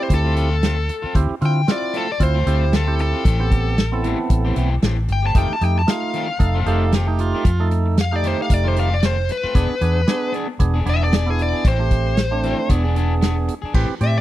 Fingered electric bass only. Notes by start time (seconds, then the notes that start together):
0.10 D2
1.04 muted fingered electric bass stroke
1.15 D2
1.30 muted fingered electric bass stroke
1.42 D3
2.20 D2
2.47 D2
3.25 A1
4.30 A1
4.56 B1
4.82 A1
5.09 G1
5.35 F1
5.61 F2
6.40 F1
6.66 F1
7.45 F2
8.50 F1
9.44 muted fingered electric bass stroke
9.55 E1
9.70 muted fingered electric bass stroke
9.81 E2
10.60 E1
10.86 E1
11.65 A1
12.69 E1
13.63 muted fingered electric bass stroke
13.74 A1
13.90 muted fingered electric bass stroke
14.01 A2